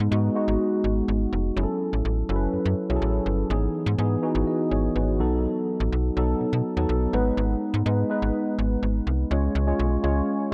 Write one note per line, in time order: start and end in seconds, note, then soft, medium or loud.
0.00 0.11 G#3 medium
0.00 0.11 B3 medium
0.00 0.12 D#4 medium
0.00 1.58 B4 medium
0.11 0.30 G#2 loud
0.11 0.29 G#3 medium
0.11 0.30 B3 medium
0.11 0.30 D#4 medium
0.11 0.30 F#4 medium
0.35 1.08 G#3 medium
0.35 1.08 B3 medium
0.35 1.08 D#4 medium
0.35 1.08 F#4 medium
0.48 0.57 G#1 medium
0.84 1.02 G#1 medium
1.08 1.26 G#1 medium
1.33 1.51 F1 medium
1.56 1.66 F#1 loud
1.56 2.11 F#3 medium
1.56 2.11 C#4 medium
1.56 2.11 E4 medium
1.56 1.63 G#4 medium
1.63 2.14 A4 medium
1.93 2.02 A1 medium
2.05 2.23 A1 medium
2.29 2.47 F#1 medium
2.29 2.74 F#3 medium
2.29 2.74 C#4 medium
2.29 2.75 E4 medium
2.29 2.35 A4 medium
2.36 2.78 B4 medium
2.53 2.58 F#2 soft
2.66 2.75 F#2 medium
2.89 2.99 B1 medium
2.89 3.35 F#3 medium
2.89 3.35 C#4 medium
2.89 3.35 E4 medium
2.89 2.96 G#4 medium
2.96 3.38 A4 medium
3.02 3.20 A1 loud
3.26 3.44 G1 medium
3.50 3.68 G#1 loud
3.50 3.86 E3 medium
3.50 3.86 B3 medium
3.50 3.87 D#4 medium
3.50 3.87 G#4 medium
3.86 3.96 G#2 loud
3.98 4.17 G#2 medium
3.98 4.17 E3 medium
3.98 4.17 B3 medium
3.98 4.17 D#4 medium
3.98 4.17 G#4 medium
4.22 4.95 E3 medium
4.22 4.95 B3 medium
4.22 4.95 D#4 medium
4.22 4.47 F#4 medium
4.35 4.44 G#1 medium
4.47 4.70 G#4 soft
4.47 4.70 D#5 medium
4.71 4.89 G#1 medium
4.71 4.95 G#4 medium
4.71 4.94 C#5 medium
4.96 5.21 G#1 medium
4.96 5.42 F#4 medium
4.96 5.41 B4 medium
5.19 5.47 B1 loud
5.19 5.97 F#3 medium
5.19 5.97 B3 medium
5.19 5.97 D#4 medium
5.19 5.97 A4 medium
5.80 5.89 A1 medium
5.92 6.11 B1 medium
6.16 6.35 B1 medium
6.16 6.62 F#3 medium
6.16 6.62 B3 medium
6.16 6.62 D#4 medium
6.16 6.62 A4 medium
6.41 6.46 B2 soft
6.53 6.62 B2 medium
6.77 6.86 D#2 medium
6.77 7.13 F#3 medium
6.77 7.12 B3 medium
6.77 7.13 D#4 medium
6.77 7.14 A4 medium
6.89 7.07 B1 medium
7.13 7.31 G#1 medium
7.13 7.71 G#3 medium
7.13 7.71 B3 medium
7.13 7.72 D#4 medium
7.13 7.72 B4 medium
7.37 7.56 G#1 loud
7.74 7.83 G#2 loud
7.86 8.04 G#2 loud
7.86 8.04 G#3 medium
7.86 8.04 B3 medium
7.86 8.04 D#4 medium
7.86 8.04 B4 medium
8.10 8.82 G#3 medium
8.10 8.82 B3 medium
8.10 8.83 D#4 medium
8.10 8.83 B4 medium
8.22 8.31 G#1 medium
8.59 8.77 G#1 medium
8.83 9.01 G#1 medium
9.07 9.25 C2 medium
9.31 9.49 C#2 loud
9.31 9.58 G#3 medium
9.31 9.58 C#4 medium
9.31 9.58 F4 medium
9.31 9.58 C#5 medium
9.55 9.73 C#2 loud
9.67 9.94 G#3 medium
9.67 9.94 C#4 medium
9.67 9.95 F4 medium
9.67 9.95 C#5 medium
9.79 9.98 B1 medium
10.03 10.22 C#2 medium
10.03 10.39 G#3 medium
10.03 10.40 C#4 medium
10.03 10.40 F4 medium
10.03 10.40 C#5 medium